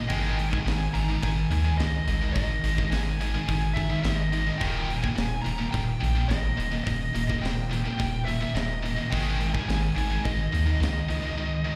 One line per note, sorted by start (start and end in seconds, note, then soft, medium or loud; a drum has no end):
0.09 0.55 G#1 loud
0.09 0.36 G#2 medium
0.09 0.36 D#3 loud
0.09 0.36 G#3 loud
0.09 0.49 G5 loud
0.09 kick loud
0.09 open hi-hat medium
0.38 0.51 G#2 medium
0.38 0.51 D#3 medium
0.38 open hi-hat medium
0.49 0.65 G#2 medium
0.49 0.65 D#3 medium
0.49 0.94 G#5 loud
0.49 kick medium
0.65 0.88 G#1 loud
0.65 0.91 G#2 medium
0.65 0.91 D#3 medium
0.65 snare loud
0.65 open hi-hat medium
0.93 1.17 G#1 loud
0.93 1.08 G#2 medium
0.93 1.08 D#3 medium
0.93 1.23 A#5 medium
0.93 open hi-hat soft
1.09 1.22 G#2 medium
1.09 1.22 D#3 medium
1.22 1.46 G#1 medium
1.22 1.48 G#2 medium
1.22 1.48 D#3 medium
1.22 1.80 G#5 loud
1.22 kick loud
1.22 open hi-hat medium
1.50 1.73 D#2 medium
1.50 1.64 G#2 medium
1.50 1.64 D#3 medium
1.50 open hi-hat medium
1.65 1.79 G#2 medium
1.65 1.79 D#3 medium
1.78 2.01 C#2 loud
1.78 2.05 G#2 medium
1.78 2.05 D#3 medium
1.78 2.31 D#5 medium
1.78 snare loud
1.78 open hi-hat medium
2.07 2.30 G#1 medium
2.07 2.22 G#2 medium
2.07 2.21 D#3 medium
2.07 open hi-hat medium
2.22 2.35 G#2 medium
2.22 2.36 D#3 medium
2.33 2.58 G#1 loud
2.33 2.61 G#2 medium
2.33 2.92 D#5 medium
2.33 kick loud
2.33 open hi-hat medium
2.37 2.61 D#3 medium
2.63 2.86 G#1 medium
2.63 2.78 G#2 medium
2.63 2.77 D#3 medium
2.63 open hi-hat medium
2.78 2.91 G#2 medium
2.78 2.91 D#3 medium
2.78 kick medium
2.90 3.37 G#1 medium
2.90 3.17 G#2 medium
2.90 3.17 D#3 medium
2.90 3.78 G#5 medium
2.90 snare loud
2.90 open hi-hat medium
3.21 3.34 G#2 medium
3.21 3.33 D#3 medium
3.21 open hi-hat medium
3.34 3.47 G#2 medium
3.34 3.48 D#3 medium
3.48 3.94 G#1 medium
3.48 3.73 G#2 medium
3.48 3.74 D#3 medium
3.48 kick loud
3.48 open hi-hat medium
3.74 3.89 G#2 medium
3.74 3.88 D#3 medium
3.74 4.02 E5 medium
3.74 kick medium
3.78 open hi-hat medium
3.90 4.02 G#2 medium
3.90 4.02 D#3 medium
4.03 4.50 G#1 medium
4.03 4.29 G#2 medium
4.03 4.29 D#3 medium
4.03 4.14 E5 medium
4.03 snare loud
4.03 open hi-hat medium
4.14 4.62 D#5 medium
4.32 4.46 G#2 medium
4.32 4.45 D#3 medium
4.32 open hi-hat soft
4.46 4.59 G#2 medium
4.46 4.59 D#3 medium
4.58 5.07 D#1 loud
4.58 4.87 D#2 medium
4.58 4.87 A#2 medium
4.58 4.87 D#3 medium
4.58 4.98 G5 medium
4.58 kick loud
4.58 open hi-hat medium
4.88 5.01 D#2 medium
4.88 5.01 A#2 medium
4.88 open hi-hat medium
4.98 5.15 A#2 medium
4.98 5.40 G#5 medium
5.03 5.14 D#2 medium
5.03 kick medium
5.15 5.40 D#1 loud
5.15 5.42 D#2 medium
5.15 5.42 A#2 medium
5.15 snare loud
5.15 open hi-hat medium
5.42 5.68 D#1 medium
5.42 5.58 D#2 medium
5.42 5.57 A#2 medium
5.42 5.70 A#5 medium
5.46 open hi-hat medium
5.58 5.71 D#2 medium
5.58 5.72 A#2 medium
5.70 5.97 D#1 medium
5.70 5.98 D#2 medium
5.70 5.99 A#2 medium
5.70 6.30 G5 medium
5.70 kick loud
5.70 open hi-hat medium
6.00 6.25 A#1 medium
6.00 6.14 D#2 medium
6.00 6.14 A#2 medium
6.00 open hi-hat medium
6.15 6.28 D#2 soft
6.15 6.28 A#2 medium
6.28 6.52 G#1 medium
6.28 6.55 D#2 medium
6.28 6.55 A#2 medium
6.28 6.81 D#5 medium
6.28 snare loud
6.28 open hi-hat medium
6.57 6.81 D#1 medium
6.57 6.72 D#2 medium
6.57 6.71 A#2 medium
6.57 open hi-hat soft
6.72 6.85 D#2 medium
6.72 6.86 A#2 medium
6.84 7.09 D#1 loud
6.84 7.12 D#2 medium
6.84 7.12 A#2 medium
6.84 7.37 D#5 medium
6.84 kick loud
6.84 open hi-hat medium
7.15 7.38 D#1 medium
7.15 7.29 D#2 medium
7.15 7.29 A#2 medium
7.15 open hi-hat medium
7.29 7.42 D#2 medium
7.29 7.42 A#2 medium
7.29 kick medium
7.42 7.88 D#1 medium
7.42 7.68 D#2 medium
7.42 7.68 A#2 medium
7.42 8.29 G5 medium
7.42 snare loud
7.42 open hi-hat medium
7.71 7.84 D#2 medium
7.71 7.84 A#2 medium
7.71 open hi-hat medium
7.85 7.98 D#2 medium
7.85 7.98 A#2 medium
7.99 8.45 D#1 medium
7.99 8.24 D#2 medium
7.99 8.24 A#2 medium
7.99 kick loud
7.99 open hi-hat medium
8.25 8.39 D#2 medium
8.25 8.39 A#2 medium
8.25 8.54 E5 medium
8.25 open hi-hat medium
8.40 8.54 D#2 medium
8.40 8.54 A#2 medium
8.54 9.00 D#1 loud
8.54 8.81 D#2 medium
8.54 8.81 A#2 medium
8.54 9.07 D#5 medium
8.54 snare loud
8.54 open hi-hat medium
8.83 8.96 D#2 medium
8.83 8.95 A#2 medium
8.83 open hi-hat soft
8.96 9.12 D#2 medium
8.96 9.11 A#2 medium
9.10 9.58 G#1 loud
9.10 9.38 G#2 medium
9.10 9.38 D#3 loud
9.10 9.39 G#3 medium
9.10 9.50 G5 medium
9.10 kick medium
9.10 open hi-hat medium
9.40 9.54 G#2 medium
9.40 9.53 D#3 medium
9.40 open hi-hat medium
9.54 9.68 G#2 medium
9.54 9.68 D#3 medium
9.54 9.67 G#5 medium
9.54 kick medium
9.68 9.91 G#1 medium
9.68 9.94 G#2 medium
9.68 9.94 D#3 medium
9.68 10.26 G#5 medium
9.68 snare loud
9.68 open hi-hat medium
9.96 10.19 G#1 medium
9.96 10.10 G#2 medium
9.96 10.09 D#3 medium
9.96 open hi-hat medium
10.10 10.24 G#2 medium
10.10 10.24 D#3 medium
10.24 10.48 G#1 medium
10.24 10.50 G#2 medium
10.24 10.50 D#3 medium
10.24 11.76 D#5 medium
10.24 kick loud
10.24 open hi-hat medium
10.53 10.76 D#2 medium
10.53 10.66 G#2 medium
10.53 10.65 D#3 medium
10.53 open hi-hat soft
10.66 10.79 G#2 medium
10.66 10.79 D#3 medium
10.80 11.03 C#2 medium
10.80 11.06 G#2 medium
10.80 11.06 D#3 medium
10.80 snare loud
10.80 open hi-hat medium
11.08 11.32 C#2 medium
11.08 11.21 G#2 medium
11.08 11.21 D#3 medium
11.08 open hi-hat soft
11.22 11.37 G#2 medium
11.22 11.37 D#3 medium
11.38 11.63 G#2 medium
11.38 11.63 D#3 medium
11.65 11.76 G#2 medium
11.65 11.76 D#3 medium